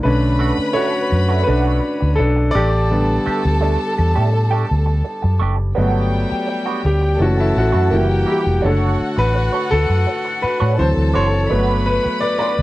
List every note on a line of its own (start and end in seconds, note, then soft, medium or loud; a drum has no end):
0.03 0.51 B1 loud
0.03 1.08 D3 medium
0.03 1.08 A3 soft
0.03 1.08 C#4 medium
0.03 0.73 D4 medium
0.03 0.78 B4 medium
0.03 2.15 B4 medium
0.03 2.15 B5 loud
0.39 0.56 A3 medium
0.39 0.56 D4 medium
0.39 0.57 F#4 medium
0.58 muted fingered electric bass stroke soft
0.73 0.91 A3 medium
0.73 0.92 D4 medium
0.73 1.44 F#4 medium
0.73 0.92 A4 medium
0.73 1.42 C#5 medium
1.10 1.43 F#2 medium
1.10 muted clean electric guitar stroke soft
1.29 1.43 A3 soft
1.29 1.43 D4 soft
1.29 1.42 F#4 medium
1.43 1.80 A3 medium
1.43 2.19 B4 medium
1.48 1.79 B1 medium
1.48 2.15 D4 medium
1.48 1.81 D4 medium
1.48 1.81 F#4 medium
1.82 muted clean electric guitar stroke soft
2.00 2.17 D2 medium
2.00 muted clean electric guitar stroke soft
2.16 2.51 A4 medium
2.16 muted clean electric guitar stroke soft
2.20 2.50 B1 medium
2.20 2.53 D4 medium
2.36 muted clean electric guitar stroke soft
2.51 2.71 A3 medium
2.51 5.00 D5 loud
2.55 3.17 A1 loud
2.55 2.71 D4 medium
2.55 5.02 G4 medium
2.55 2.71 G4 medium
2.55 5.38 A4 medium
2.55 5.38 A5 loud
2.73 muted clean electric guitar stroke soft
2.90 5.73 D3 medium
2.90 5.73 G3 soft
2.90 5.74 B3 medium
3.26 3.42 A3 medium
3.26 3.43 D4 medium
3.26 3.43 G4 medium
3.26 muted fingered electric bass stroke soft
3.45 3.76 D2 medium
3.61 3.78 A3 medium
3.61 3.78 D4 medium
3.61 3.79 A4 medium
3.97 4.14 E2 medium
3.97 muted clean electric guitar stroke soft
4.15 4.63 A2 medium
4.15 4.29 A3 soft
4.15 4.29 D4 soft
4.15 4.28 G4 medium
4.32 muted clean electric guitar stroke soft
4.50 4.67 A3 medium
4.50 4.67 D4 medium
4.50 4.67 G4 medium
4.71 5.02 D2 medium
4.86 muted clean electric guitar stroke soft
5.05 muted clean electric guitar stroke soft
5.22 5.39 F#2 medium
5.22 muted clean electric guitar stroke soft
5.40 5.72 F#1 medium
5.40 5.57 A3 medium
5.40 5.57 D4 medium
5.40 5.57 G4 medium
5.58 muted clean electric guitar stroke soft
5.75 6.24 G1 medium
5.75 6.81 F#3 soft
5.75 7.18 G3 medium
5.75 6.81 A3 soft
5.75 6.09 B3 medium
5.75 6.81 B3 medium
5.75 6.10 D4 medium
5.75 6.10 F#4 medium
5.75 7.18 G5 medium
6.30 muted clean electric guitar stroke soft
6.30 muted fingered electric bass stroke soft
6.48 muted clean electric guitar stroke soft
6.66 6.83 B3 soft
6.66 6.83 D4 medium
6.66 6.82 F#4 medium
6.84 7.16 D2 medium
6.84 7.22 G4 medium
6.84 muted clean electric guitar stroke soft
7.01 muted clean electric guitar stroke soft
7.19 7.51 F#1 loud
7.19 7.88 E3 soft
7.19 7.89 A3 soft
7.19 7.89 C#4 medium
7.19 7.40 F#4 medium
7.19 7.90 A4 medium
7.19 7.90 A5 medium
7.19 muted clean electric guitar stroke soft
7.37 7.56 E4 medium
7.37 muted clean electric guitar stroke soft
7.56 7.72 A1 medium
7.56 8.31 F#4 medium
7.72 7.90 F#2 medium
7.72 7.90 A3 medium
7.72 7.90 E4 medium
7.72 7.89 F#4 medium
7.90 8.23 F#1 loud
7.90 8.40 E3 soft
7.90 8.41 G3 soft
7.90 8.07 A#3 medium
7.90 8.41 A#3 medium
7.90 8.08 E4 medium
7.90 8.62 G4 medium
7.90 8.07 G4 medium
7.90 8.62 G5 medium
8.26 8.40 A#3 medium
8.26 8.40 E4 medium
8.26 8.41 G4 medium
8.31 8.66 G4 medium
8.46 8.62 F1 medium
8.62 8.95 F#1 medium
8.62 9.67 D3 medium
8.62 9.68 A3 soft
8.62 8.96 D4 medium
8.62 10.74 F#4 medium
8.62 8.96 A4 medium
8.62 9.15 A4 medium
8.62 8.97 C#5 medium
8.62 9.68 C#5 medium
8.62 10.74 F#5 medium
9.00 muted fingered electric bass stroke soft
9.17 9.48 A1 medium
9.17 9.73 B4 loud
9.17 muted clean electric guitar stroke soft
9.34 muted clean electric guitar stroke soft
9.52 9.70 D4 soft
9.52 9.70 A4 medium
9.52 9.69 C#5 medium
9.71 9.87 D2 medium
9.71 10.39 A4 loud
9.71 muted clean electric guitar stroke soft
9.89 10.05 F#2 medium
9.89 muted clean electric guitar stroke soft
10.07 muted clean electric guitar stroke soft
10.25 muted clean electric guitar stroke soft
10.42 10.79 B4 medium
10.42 muted fingered electric bass stroke soft
10.60 10.77 A2 medium
10.60 10.76 D4 medium
10.60 10.77 A4 medium
10.60 10.76 C#5 medium
10.77 10.95 D2 loud
10.77 11.26 E3 medium
10.77 11.26 F#3 soft
10.77 11.27 C4 medium
10.77 11.49 A4 medium
10.77 10.87 C5 medium
10.77 11.49 A5 medium
10.77 muted clean electric guitar stroke soft
10.97 11.12 D2 medium
11.14 11.46 F#1 medium
11.14 11.27 D4 medium
11.14 11.27 F#4 medium
11.14 11.27 C5 medium
11.14 11.89 C#5 medium
11.33 muted clean electric guitar stroke soft
11.50 11.98 G1 medium
11.50 12.53 F#3 soft
11.50 12.54 A3 soft
11.50 12.54 B3 medium
11.50 11.83 D4 medium
11.50 11.84 F#4 medium
11.50 12.62 B4 medium
11.50 11.84 B4 medium
11.50 12.62 B5 medium
11.86 12.23 B4 medium
12.03 muted clean electric guitar stroke soft
12.03 muted fingered electric bass stroke soft
12.20 12.37 D5 medium
12.20 muted clean electric guitar stroke soft
12.38 12.55 D4 medium
12.38 12.56 F#4 medium
12.38 12.57 B4 medium
12.38 12.62 D5 medium
12.59 12.62 D2 medium